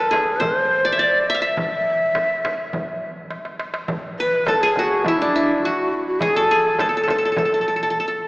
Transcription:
Already playing: qanun A4 B4, ney A4
0.11 qanun G#4, darbuka tek, frame drum
0.40 qanun C5, ney C5, frame drum, darbuka dum
0.71 darbuka ka
0.85 qanun D5
0.92 qanun E5
0.98 ney D5, qanun D5
1.15 darbuka ka
1.28 ney E5, qanun E5, darbuka ka
1.35 qanun F5
1.41 ney E5, qanun E5, darbuka ka
1.57 darbuka dum, frame drum
1.86 darbuka ka
2.15 darbuka tek, frame drum
2.30 darbuka ka
2.45 darbuka tek, frame drum
2.73 darbuka dum, frame drum
3.31 darbuka tek
3.45 darbuka ka
3.60 darbuka tek
3.74 darbuka ka
3.88 darbuka dum, frame drum
4.19 ney B4, qanun B4
4.46 ney A4, qanun A4, darbuka tek, frame drum
4.61 ney G#4, qanun G#4, darbuka ka
4.76 qanun F#4, frame drum
5.04 ney E4, qanun E4, frame drum, darbuka dum
5.18 ney D4, qanun D4
5.36 qanun E4
5.63 ney F#4, qanun F#4, darbuka ka
5.77 darbuka ka
5.92 darbuka ka
6.07 ney F#4
6.20 ney G#4, qanun G#4, darbuka dum, frame drum
6.35 ney A4, qanun A4
6.51 qanun G#4
6.78 ney A4, qanun A4, darbuka tek, frame drum
6.89 qanun A4
6.94 qanun A4, darbuka ka
7.03 qanun A4
7.08 qanun A4, darbuka tek, frame drum
7.18 qanun A4
7.25 qanun A4
7.32 qanun A4
7.36 qanun A4, darbuka dum, frame drum
7.45 qanun A4
7.54 qanun A4
7.61 qanun A4
7.68 qanun A4
7.76 qanun A4
7.83 qanun A4
7.90 qanun A4
7.96 darbuka ka
8.00 qanun A4
8.08 qanun A4, darbuka ka

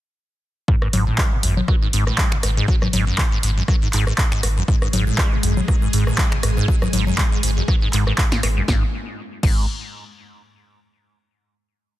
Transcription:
0.68 acid bass G#2, kick
0.82 acid bass G#2, cross-stick
0.93 sub bass G#1, acid bass G#2, open hi-hat, low conga
1.07 acid bass A2
1.18 acid bass G#3, kick, cross-stick, clap
1.32 acid bass G#2
1.43 sub bass G#1, acid bass F#2, open hi-hat
1.57 acid bass B2, low conga
1.68 acid bass F#3, kick, cross-stick
1.82 acid bass G#2
1.93 sub bass G#1, acid bass G#2, open hi-hat
2.07 acid bass A2, cross-stick
2.18 acid bass G#3, kick, clap
2.32 acid bass G#2, finger snap
2.43 sub bass G#1, acid bass G#2, cross-stick, open hi-hat
2.57 acid bass G#2
2.68 acid bass F#3, kick
2.82 acid bass G#2, cross-stick, low conga
2.93 sub bass G#1, acid bass G#2, open hi-hat, low conga
3.07 acid bass F#2
3.18 acid bass G#3, kick, cross-stick, clap
3.32 acid bass G#2
3.43 sub bass G#1, acid bass G#2, open hi-hat
3.57 acid bass F#2
3.68 acid bass F#3, kick, cross-stick
3.82 acid bass G#2
3.93 sub bass G#1, acid bass G#2, clap, open hi-hat
4.07 acid bass G#2, cross-stick
4.18 acid bass G#2, kick, clap
4.32 acid bass G#2, finger snap
4.43 sub bass G#1, acid bass G#2, cross-stick, open hi-hat
4.57 acid bass F#2
4.68 acid bass G#2, string machine G#3 G#4, kick
4.82 acid bass G#2, cross-stick
4.93 sub bass G#1, acid bass G#2, open hi-hat, low conga
5.07 acid bass A2
5.18 acid bass G#3, kick, cross-stick, clap
5.32 acid bass G#2
5.43 sub bass G#1, acid bass F#2, open hi-hat
5.57 acid bass B2, low conga
5.68 acid bass F#3, kick, cross-stick
5.82 acid bass G#2
5.93 sub bass G#1, acid bass G#2, open hi-hat
6.07 acid bass A2, cross-stick
6.18 acid bass G#3, kick, clap
6.32 acid bass G#2, finger snap
6.43 sub bass G#1, acid bass G#2, cross-stick, open hi-hat
6.57 acid bass G#2
6.68 acid bass F#3, kick
6.82 acid bass G#2, cross-stick, low conga
6.93 sub bass G#1, acid bass G#2, open hi-hat, low conga
7.07 acid bass F#2, low conga
7.18 acid bass G#3, kick, cross-stick, clap
7.32 acid bass G#2
7.43 sub bass G#1, acid bass G#2, open hi-hat
7.57 acid bass F#2
7.68 acid bass F#3, kick, cross-stick
7.82 acid bass G#2
7.93 sub bass G#1, acid bass G#2, clap, open hi-hat
8.07 acid bass G#2, cross-stick
8.18 acid bass G#2, kick, clap
8.32 acid bass G#2, finger snap, snare
8.43 sub bass G#1, acid bass G#2, cross-stick, open hi-hat
8.57 acid bass F#2
8.68 sub bass G#1, acid bass G#2, kick, snare
9.43 sub bass G#1, acid bass G#2, kick, crash

